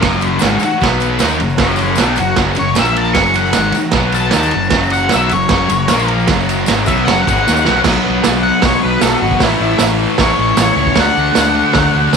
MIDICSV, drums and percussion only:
0, 0, Header, 1, 2, 480
1, 0, Start_track
1, 0, Tempo, 390371
1, 43, Time_signature, 4, 2, 24, 8
1, 14962, End_track
2, 0, Start_track
2, 0, Title_t, "Drums"
2, 28, Note_on_c, 9, 38, 111
2, 29, Note_on_c, 9, 51, 91
2, 36, Note_on_c, 9, 36, 101
2, 151, Note_off_c, 9, 38, 0
2, 152, Note_off_c, 9, 51, 0
2, 158, Note_off_c, 9, 36, 0
2, 158, Note_on_c, 9, 54, 31
2, 259, Note_off_c, 9, 54, 0
2, 259, Note_on_c, 9, 54, 73
2, 272, Note_on_c, 9, 51, 71
2, 382, Note_off_c, 9, 54, 0
2, 395, Note_off_c, 9, 51, 0
2, 481, Note_on_c, 9, 54, 93
2, 511, Note_on_c, 9, 38, 106
2, 512, Note_on_c, 9, 51, 95
2, 603, Note_off_c, 9, 54, 0
2, 634, Note_off_c, 9, 38, 0
2, 635, Note_off_c, 9, 51, 0
2, 731, Note_on_c, 9, 54, 82
2, 772, Note_on_c, 9, 51, 68
2, 854, Note_off_c, 9, 54, 0
2, 869, Note_on_c, 9, 54, 32
2, 895, Note_off_c, 9, 51, 0
2, 991, Note_off_c, 9, 54, 0
2, 991, Note_on_c, 9, 54, 30
2, 1005, Note_on_c, 9, 36, 104
2, 1024, Note_on_c, 9, 38, 109
2, 1025, Note_on_c, 9, 51, 92
2, 1114, Note_off_c, 9, 54, 0
2, 1128, Note_off_c, 9, 36, 0
2, 1146, Note_off_c, 9, 38, 0
2, 1148, Note_off_c, 9, 51, 0
2, 1232, Note_on_c, 9, 54, 78
2, 1251, Note_on_c, 9, 51, 71
2, 1355, Note_off_c, 9, 54, 0
2, 1373, Note_off_c, 9, 51, 0
2, 1462, Note_on_c, 9, 54, 102
2, 1474, Note_on_c, 9, 38, 104
2, 1476, Note_on_c, 9, 51, 92
2, 1578, Note_off_c, 9, 54, 0
2, 1578, Note_on_c, 9, 54, 76
2, 1597, Note_off_c, 9, 38, 0
2, 1598, Note_off_c, 9, 51, 0
2, 1701, Note_off_c, 9, 54, 0
2, 1716, Note_on_c, 9, 54, 29
2, 1719, Note_on_c, 9, 51, 65
2, 1838, Note_off_c, 9, 54, 0
2, 1838, Note_on_c, 9, 54, 26
2, 1842, Note_off_c, 9, 51, 0
2, 1942, Note_on_c, 9, 38, 110
2, 1943, Note_on_c, 9, 51, 89
2, 1952, Note_on_c, 9, 36, 97
2, 1961, Note_off_c, 9, 54, 0
2, 2065, Note_off_c, 9, 38, 0
2, 2066, Note_off_c, 9, 51, 0
2, 2068, Note_on_c, 9, 54, 30
2, 2075, Note_off_c, 9, 36, 0
2, 2163, Note_off_c, 9, 54, 0
2, 2163, Note_on_c, 9, 54, 67
2, 2195, Note_on_c, 9, 51, 66
2, 2286, Note_off_c, 9, 54, 0
2, 2293, Note_on_c, 9, 54, 28
2, 2318, Note_off_c, 9, 51, 0
2, 2404, Note_off_c, 9, 54, 0
2, 2404, Note_on_c, 9, 54, 87
2, 2432, Note_on_c, 9, 38, 106
2, 2433, Note_on_c, 9, 51, 97
2, 2527, Note_off_c, 9, 54, 0
2, 2555, Note_off_c, 9, 38, 0
2, 2556, Note_off_c, 9, 51, 0
2, 2655, Note_on_c, 9, 54, 80
2, 2676, Note_on_c, 9, 51, 77
2, 2778, Note_off_c, 9, 54, 0
2, 2799, Note_off_c, 9, 51, 0
2, 2904, Note_on_c, 9, 38, 110
2, 2906, Note_on_c, 9, 51, 102
2, 2916, Note_on_c, 9, 36, 106
2, 3027, Note_off_c, 9, 38, 0
2, 3029, Note_off_c, 9, 51, 0
2, 3038, Note_off_c, 9, 36, 0
2, 3133, Note_on_c, 9, 54, 72
2, 3151, Note_on_c, 9, 51, 80
2, 3256, Note_off_c, 9, 54, 0
2, 3274, Note_off_c, 9, 51, 0
2, 3384, Note_on_c, 9, 54, 98
2, 3394, Note_on_c, 9, 38, 119
2, 3395, Note_on_c, 9, 51, 101
2, 3507, Note_off_c, 9, 54, 0
2, 3509, Note_on_c, 9, 54, 77
2, 3517, Note_off_c, 9, 38, 0
2, 3518, Note_off_c, 9, 51, 0
2, 3632, Note_off_c, 9, 54, 0
2, 3644, Note_on_c, 9, 51, 80
2, 3748, Note_on_c, 9, 54, 26
2, 3767, Note_off_c, 9, 51, 0
2, 3866, Note_on_c, 9, 38, 109
2, 3867, Note_on_c, 9, 51, 99
2, 3871, Note_off_c, 9, 54, 0
2, 3876, Note_on_c, 9, 36, 109
2, 3989, Note_off_c, 9, 38, 0
2, 3990, Note_off_c, 9, 51, 0
2, 3999, Note_off_c, 9, 36, 0
2, 3999, Note_on_c, 9, 54, 27
2, 4107, Note_off_c, 9, 54, 0
2, 4107, Note_on_c, 9, 54, 71
2, 4124, Note_on_c, 9, 51, 76
2, 4230, Note_off_c, 9, 54, 0
2, 4247, Note_off_c, 9, 51, 0
2, 4247, Note_on_c, 9, 54, 30
2, 4337, Note_on_c, 9, 38, 109
2, 4338, Note_on_c, 9, 51, 101
2, 4341, Note_off_c, 9, 54, 0
2, 4341, Note_on_c, 9, 54, 89
2, 4460, Note_off_c, 9, 38, 0
2, 4461, Note_off_c, 9, 51, 0
2, 4464, Note_off_c, 9, 54, 0
2, 4577, Note_on_c, 9, 51, 72
2, 4606, Note_on_c, 9, 54, 81
2, 4700, Note_off_c, 9, 51, 0
2, 4729, Note_off_c, 9, 54, 0
2, 4812, Note_on_c, 9, 38, 115
2, 4814, Note_on_c, 9, 51, 83
2, 4832, Note_on_c, 9, 36, 99
2, 4935, Note_off_c, 9, 38, 0
2, 4937, Note_off_c, 9, 51, 0
2, 4955, Note_off_c, 9, 36, 0
2, 5070, Note_on_c, 9, 51, 67
2, 5095, Note_on_c, 9, 54, 88
2, 5192, Note_off_c, 9, 51, 0
2, 5218, Note_off_c, 9, 54, 0
2, 5296, Note_on_c, 9, 38, 110
2, 5297, Note_on_c, 9, 51, 90
2, 5325, Note_on_c, 9, 54, 98
2, 5419, Note_off_c, 9, 38, 0
2, 5420, Note_off_c, 9, 51, 0
2, 5447, Note_off_c, 9, 54, 0
2, 5447, Note_on_c, 9, 54, 87
2, 5545, Note_on_c, 9, 51, 65
2, 5570, Note_off_c, 9, 54, 0
2, 5668, Note_off_c, 9, 51, 0
2, 5705, Note_on_c, 9, 54, 31
2, 5782, Note_on_c, 9, 38, 108
2, 5783, Note_on_c, 9, 51, 92
2, 5794, Note_on_c, 9, 36, 104
2, 5828, Note_off_c, 9, 54, 0
2, 5905, Note_off_c, 9, 38, 0
2, 5906, Note_off_c, 9, 51, 0
2, 5917, Note_off_c, 9, 36, 0
2, 5946, Note_on_c, 9, 54, 35
2, 6027, Note_on_c, 9, 51, 67
2, 6068, Note_off_c, 9, 54, 0
2, 6068, Note_on_c, 9, 54, 72
2, 6150, Note_off_c, 9, 51, 0
2, 6191, Note_off_c, 9, 54, 0
2, 6259, Note_on_c, 9, 38, 108
2, 6260, Note_on_c, 9, 51, 84
2, 6293, Note_on_c, 9, 54, 93
2, 6382, Note_off_c, 9, 38, 0
2, 6383, Note_off_c, 9, 51, 0
2, 6416, Note_off_c, 9, 54, 0
2, 6508, Note_on_c, 9, 51, 71
2, 6533, Note_on_c, 9, 54, 78
2, 6631, Note_off_c, 9, 51, 0
2, 6656, Note_off_c, 9, 54, 0
2, 6668, Note_on_c, 9, 54, 32
2, 6748, Note_on_c, 9, 38, 115
2, 6749, Note_on_c, 9, 51, 97
2, 6761, Note_on_c, 9, 36, 109
2, 6791, Note_off_c, 9, 54, 0
2, 6871, Note_off_c, 9, 38, 0
2, 6872, Note_off_c, 9, 51, 0
2, 6884, Note_off_c, 9, 36, 0
2, 7000, Note_on_c, 9, 54, 78
2, 7002, Note_on_c, 9, 51, 75
2, 7123, Note_off_c, 9, 54, 0
2, 7125, Note_off_c, 9, 51, 0
2, 7229, Note_on_c, 9, 38, 118
2, 7230, Note_on_c, 9, 51, 108
2, 7241, Note_on_c, 9, 54, 98
2, 7352, Note_off_c, 9, 38, 0
2, 7353, Note_off_c, 9, 51, 0
2, 7364, Note_off_c, 9, 54, 0
2, 7369, Note_on_c, 9, 54, 83
2, 7479, Note_on_c, 9, 51, 67
2, 7492, Note_off_c, 9, 54, 0
2, 7602, Note_off_c, 9, 51, 0
2, 7615, Note_on_c, 9, 54, 28
2, 7713, Note_on_c, 9, 38, 109
2, 7715, Note_on_c, 9, 51, 98
2, 7728, Note_on_c, 9, 36, 116
2, 7738, Note_off_c, 9, 54, 0
2, 7738, Note_on_c, 9, 54, 33
2, 7836, Note_off_c, 9, 38, 0
2, 7838, Note_off_c, 9, 51, 0
2, 7851, Note_off_c, 9, 36, 0
2, 7861, Note_off_c, 9, 54, 0
2, 7871, Note_on_c, 9, 54, 31
2, 7979, Note_on_c, 9, 51, 76
2, 7980, Note_off_c, 9, 54, 0
2, 7980, Note_on_c, 9, 54, 81
2, 8099, Note_off_c, 9, 54, 0
2, 8099, Note_on_c, 9, 54, 30
2, 8102, Note_off_c, 9, 51, 0
2, 8193, Note_off_c, 9, 54, 0
2, 8193, Note_on_c, 9, 54, 97
2, 8213, Note_on_c, 9, 38, 105
2, 8214, Note_on_c, 9, 51, 99
2, 8316, Note_off_c, 9, 54, 0
2, 8336, Note_off_c, 9, 38, 0
2, 8337, Note_off_c, 9, 51, 0
2, 8434, Note_on_c, 9, 54, 90
2, 8456, Note_on_c, 9, 36, 108
2, 8460, Note_on_c, 9, 51, 79
2, 8557, Note_off_c, 9, 54, 0
2, 8566, Note_on_c, 9, 54, 34
2, 8579, Note_off_c, 9, 36, 0
2, 8583, Note_off_c, 9, 51, 0
2, 8679, Note_off_c, 9, 54, 0
2, 8679, Note_on_c, 9, 54, 33
2, 8702, Note_on_c, 9, 38, 111
2, 8703, Note_on_c, 9, 51, 104
2, 8802, Note_off_c, 9, 54, 0
2, 8807, Note_on_c, 9, 54, 30
2, 8825, Note_off_c, 9, 38, 0
2, 8826, Note_off_c, 9, 51, 0
2, 8929, Note_off_c, 9, 54, 0
2, 8943, Note_on_c, 9, 36, 107
2, 8949, Note_on_c, 9, 54, 78
2, 8958, Note_on_c, 9, 51, 73
2, 9066, Note_off_c, 9, 36, 0
2, 9072, Note_off_c, 9, 54, 0
2, 9072, Note_on_c, 9, 54, 33
2, 9081, Note_off_c, 9, 51, 0
2, 9182, Note_on_c, 9, 38, 63
2, 9193, Note_off_c, 9, 54, 0
2, 9193, Note_on_c, 9, 54, 116
2, 9305, Note_off_c, 9, 38, 0
2, 9305, Note_off_c, 9, 54, 0
2, 9305, Note_on_c, 9, 54, 90
2, 9406, Note_on_c, 9, 38, 94
2, 9428, Note_off_c, 9, 54, 0
2, 9529, Note_off_c, 9, 38, 0
2, 9551, Note_on_c, 9, 54, 30
2, 9641, Note_on_c, 9, 38, 110
2, 9643, Note_on_c, 9, 49, 118
2, 9654, Note_on_c, 9, 36, 123
2, 9674, Note_off_c, 9, 54, 0
2, 9764, Note_off_c, 9, 38, 0
2, 9765, Note_off_c, 9, 49, 0
2, 9777, Note_off_c, 9, 36, 0
2, 10126, Note_on_c, 9, 38, 114
2, 10127, Note_on_c, 9, 46, 61
2, 10136, Note_on_c, 9, 54, 91
2, 10249, Note_off_c, 9, 38, 0
2, 10250, Note_off_c, 9, 46, 0
2, 10259, Note_off_c, 9, 54, 0
2, 10598, Note_on_c, 9, 38, 127
2, 10599, Note_on_c, 9, 46, 66
2, 10611, Note_on_c, 9, 36, 117
2, 10721, Note_off_c, 9, 38, 0
2, 10722, Note_off_c, 9, 46, 0
2, 10734, Note_off_c, 9, 36, 0
2, 11081, Note_on_c, 9, 38, 107
2, 11083, Note_on_c, 9, 46, 66
2, 11083, Note_on_c, 9, 54, 93
2, 11204, Note_off_c, 9, 38, 0
2, 11206, Note_off_c, 9, 46, 0
2, 11206, Note_off_c, 9, 54, 0
2, 11449, Note_on_c, 9, 36, 77
2, 11559, Note_on_c, 9, 38, 119
2, 11560, Note_on_c, 9, 46, 70
2, 11569, Note_off_c, 9, 36, 0
2, 11569, Note_on_c, 9, 36, 106
2, 11682, Note_off_c, 9, 38, 0
2, 11683, Note_off_c, 9, 46, 0
2, 11692, Note_off_c, 9, 36, 0
2, 12030, Note_on_c, 9, 38, 115
2, 12031, Note_on_c, 9, 46, 70
2, 12040, Note_on_c, 9, 54, 94
2, 12153, Note_off_c, 9, 38, 0
2, 12154, Note_off_c, 9, 46, 0
2, 12163, Note_off_c, 9, 54, 0
2, 12516, Note_on_c, 9, 38, 113
2, 12517, Note_on_c, 9, 46, 61
2, 12526, Note_on_c, 9, 36, 105
2, 12639, Note_off_c, 9, 38, 0
2, 12640, Note_off_c, 9, 46, 0
2, 12649, Note_off_c, 9, 36, 0
2, 12995, Note_on_c, 9, 54, 104
2, 12997, Note_on_c, 9, 38, 127
2, 12998, Note_on_c, 9, 46, 68
2, 13118, Note_off_c, 9, 54, 0
2, 13120, Note_off_c, 9, 38, 0
2, 13121, Note_off_c, 9, 46, 0
2, 13365, Note_on_c, 9, 36, 84
2, 13468, Note_on_c, 9, 38, 127
2, 13470, Note_on_c, 9, 46, 61
2, 13481, Note_off_c, 9, 36, 0
2, 13481, Note_on_c, 9, 36, 94
2, 13591, Note_off_c, 9, 38, 0
2, 13593, Note_off_c, 9, 46, 0
2, 13604, Note_off_c, 9, 36, 0
2, 13955, Note_on_c, 9, 38, 124
2, 13957, Note_on_c, 9, 46, 64
2, 13967, Note_on_c, 9, 54, 88
2, 14078, Note_off_c, 9, 38, 0
2, 14080, Note_off_c, 9, 46, 0
2, 14090, Note_off_c, 9, 54, 0
2, 14426, Note_on_c, 9, 38, 104
2, 14428, Note_on_c, 9, 46, 71
2, 14443, Note_on_c, 9, 36, 121
2, 14549, Note_off_c, 9, 38, 0
2, 14550, Note_off_c, 9, 46, 0
2, 14566, Note_off_c, 9, 36, 0
2, 14913, Note_on_c, 9, 38, 107
2, 14915, Note_on_c, 9, 46, 71
2, 14924, Note_on_c, 9, 54, 95
2, 14962, Note_off_c, 9, 38, 0
2, 14962, Note_off_c, 9, 46, 0
2, 14962, Note_off_c, 9, 54, 0
2, 14962, End_track
0, 0, End_of_file